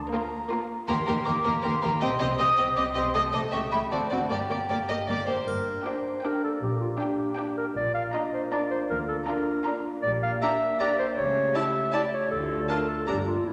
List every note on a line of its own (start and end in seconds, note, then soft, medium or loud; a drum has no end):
0.12 0.41 A#3 medium
0.12 0.41 F4 medium
0.12 0.41 A#4 medium
0.12 0.56 A#5 medium
0.50 0.79 A#3 medium
0.50 0.79 F4 medium
0.50 0.79 A#4 medium
0.88 0.96 D#2 medium
0.88 0.96 D#3 medium
0.88 0.96 A#3 medium
0.88 0.96 G4 medium
0.88 0.95 A#4 medium
0.88 1.27 C6 loud
1.07 1.15 D#2 medium
1.07 1.15 D#3 medium
1.07 1.15 A#3 medium
1.07 1.15 G4 medium
1.07 1.15 A#4 medium
1.25 1.34 D#2 medium
1.25 1.34 D#3 medium
1.25 1.34 A#3 medium
1.25 1.34 G4 medium
1.25 1.33 A#4 medium
1.25 1.62 D6 medium
1.44 1.53 D#2 medium
1.44 1.53 D#3 medium
1.44 1.52 A#3 medium
1.44 1.53 G4 medium
1.44 1.52 A#4 medium
1.63 1.72 D#2 medium
1.63 1.72 D#3 medium
1.63 1.71 A#3 medium
1.63 1.72 G4 medium
1.63 1.71 A#4 medium
1.63 1.84 C6 loud
1.82 1.91 D#2 medium
1.82 1.91 D#3 medium
1.82 1.90 A#3 medium
1.82 1.91 G4 medium
1.82 1.90 A#4 medium
1.82 2.00 A#5 medium
2.01 2.10 C2 medium
2.01 2.10 C3 medium
2.01 2.09 C4 medium
2.01 2.09 G4 medium
2.01 2.09 D#5 medium
2.01 2.38 C6 medium
2.20 2.29 C2 medium
2.20 2.29 C3 medium
2.20 2.28 C4 medium
2.20 2.29 G4 medium
2.20 2.27 D#5 medium
2.39 2.48 C2 medium
2.39 2.47 C3 medium
2.39 2.47 C4 medium
2.39 2.47 G4 medium
2.39 2.47 D#5 medium
2.39 2.75 D#6 medium
2.58 2.66 C2 medium
2.58 2.67 C3 medium
2.58 2.66 C4 medium
2.58 2.66 G4 medium
2.58 2.65 D#5 medium
2.76 2.85 C2 medium
2.76 2.86 C3 medium
2.76 2.85 C4 medium
2.76 2.84 G4 medium
2.76 2.84 D#5 medium
2.76 2.82 D6 medium
2.96 3.04 C2 medium
2.96 3.04 C3 medium
2.96 3.03 C4 medium
2.96 3.04 G4 medium
2.96 3.03 D#5 medium
2.96 3.14 C6 medium
3.14 3.23 C2 medium
3.14 3.23 C3 medium
3.14 3.22 A3 medium
3.14 3.22 A4 medium
3.14 3.22 D#5 medium
3.14 3.20 D#6 loud
3.33 3.42 C2 medium
3.33 3.42 C3 medium
3.33 3.41 A3 medium
3.33 3.41 A4 soft
3.33 3.41 D#5 medium
3.33 3.40 D6 medium
3.52 3.61 C#2 medium
3.52 3.61 C#3 medium
3.52 3.61 A3 soft
3.52 3.60 G4 medium
3.52 3.60 E5 medium
3.52 3.59 C#6 medium
3.71 3.80 C#2 medium
3.71 3.80 C#3 medium
3.71 3.80 A3 soft
3.71 3.80 G4 soft
3.71 3.79 E5 soft
3.71 3.78 B5 medium
3.91 3.99 D2 medium
3.91 3.99 D3 medium
3.91 3.99 C4 soft
3.91 3.99 F#4 medium
3.91 3.99 D5 soft
3.91 4.10 A5 medium
4.10 4.19 D2 soft
4.10 4.18 D3 medium
4.10 4.19 C4 soft
4.10 4.20 F#4 soft
4.10 4.18 D5 soft
4.10 4.30 F#5 medium
4.30 4.39 G1 medium
4.30 4.38 G2 medium
4.30 4.38 A#3 soft
4.30 4.38 G4 medium
4.30 4.38 D5 medium
4.30 5.07 G5 medium
4.49 4.58 G1 soft
4.49 4.58 G2 soft
4.49 4.57 A#3 soft
4.49 4.57 G4 soft
4.49 4.58 D5 soft
4.69 4.77 G1 medium
4.69 4.77 G2 soft
4.69 4.77 A#3 soft
4.69 4.77 G4 soft
4.69 4.77 D5 medium
4.89 4.97 G1 soft
4.89 4.97 G2 soft
4.89 4.97 A#3 soft
4.89 4.97 G4 soft
4.89 4.97 D#5 medium
5.08 5.17 G1 medium
5.08 5.16 G2 medium
5.08 5.17 A#3 soft
5.08 5.17 G4 soft
5.08 5.27 D5 medium
5.27 5.36 G1 soft
5.27 5.36 G2 soft
5.27 5.35 A#3 soft
5.27 5.35 G4 soft
5.27 5.46 C5 soft
5.47 5.77 G1 medium
5.47 5.77 G2 medium
5.47 7.72 A#3 soft
5.47 7.72 D4 soft
5.47 5.87 A#4 medium
5.47 triangle soft
5.85 6.14 D4 soft
5.85 6.14 G4 soft
5.85 6.26 C5 medium
5.85 6.14 G5 soft
6.24 6.52 D4 soft
6.24 6.52 G4 soft
6.24 6.43 A#4 medium
6.24 6.52 G5 soft
6.44 6.52 A4 medium
6.62 6.92 A#1 medium
6.62 6.92 A#2 medium
6.62 6.80 G4 medium
6.80 6.89 F4 medium
7.00 7.28 D4 soft
7.00 7.56 G4 medium
7.00 7.29 G4 soft
7.00 7.28 G5 soft
7.38 7.66 D4 soft
7.38 7.67 G4 soft
7.38 7.66 G5 soft
7.58 7.66 A#4 medium
7.76 8.07 A#1 medium
7.76 8.07 A#2 medium
7.76 10.00 A#3 soft
7.76 10.04 F4 soft
7.76 7.94 D5 medium
7.95 8.03 F5 medium
8.14 8.43 D4 soft
8.14 8.43 F4 soft
8.14 8.22 D#5 medium
8.14 8.43 A#5 medium
8.34 8.42 C5 medium
8.52 8.80 D4 soft
8.52 8.81 F4 soft
8.52 8.61 D5 medium
8.52 8.81 A#5 soft
8.71 8.79 C5 medium
8.90 9.21 D2 medium
8.90 9.20 D3 medium
8.90 8.99 A#4 medium
9.08 9.17 A4 medium
9.27 9.56 D4 soft
9.27 9.56 F4 medium
9.27 9.83 A#4 medium
9.27 9.56 A#5 medium
9.65 9.94 D4 medium
9.65 9.95 F4 medium
9.65 9.94 A#5 medium
10.03 10.36 A#1 medium
10.03 10.36 A#2 medium
10.03 11.15 A#3 medium
10.03 12.31 G4 medium
10.03 10.12 D5 medium
10.23 10.31 F5 medium
10.42 10.50 D4 soft
10.42 10.51 G4 medium
10.42 10.79 E5 medium
10.42 10.50 A#5 medium
10.79 10.88 D4 soft
10.79 10.89 G4 medium
10.79 10.98 D5 medium
10.79 10.87 A#5 medium
10.99 11.07 C5 medium
11.17 11.49 C#2 medium
11.17 11.50 C#3 medium
11.17 13.08 A3 medium
11.17 11.57 C#5 medium
11.55 11.63 E4 soft
11.55 11.63 G4 medium
11.55 11.94 E5 medium
11.55 11.63 A5 medium
11.93 12.02 E4 soft
11.93 12.02 G4 medium
11.93 12.03 D5 medium
11.93 12.01 A5 medium
12.13 12.31 C#5 medium
12.31 12.63 D2 medium
12.31 12.63 D3 medium
12.31 13.08 F4 medium
12.31 12.68 A4 medium
12.69 12.77 D4 soft
12.69 12.78 F4 soft
12.69 12.90 A#4 medium
12.69 12.77 A5 soft
12.89 13.07 A4 medium
13.07 13.40 G1 medium
13.07 13.40 G2 medium
13.07 13.46 A#3 soft
13.07 13.15 D4 soft
13.07 13.46 D4 soft
13.07 13.16 D4 soft
13.07 13.16 G4 medium
13.07 13.15 A#5 soft
13.27 13.45 F4 medium
13.46 13.53 A1 soft
13.46 13.53 A2 soft
13.46 13.53 A3 soft
13.46 13.53 C#4 soft
13.46 13.53 E4 medium